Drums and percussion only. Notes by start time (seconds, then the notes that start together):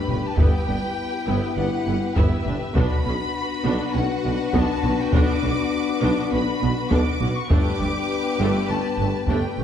0.08 taiko low-mid
0.38 taiko
2.16 taiko
2.46 taiko low-mid
2.75 taiko
4.53 taiko
4.83 taiko low-mid
5.13 taiko
6.91 taiko
7.21 taiko low-mid
7.51 taiko
9.28 taiko
9.58 taiko low-mid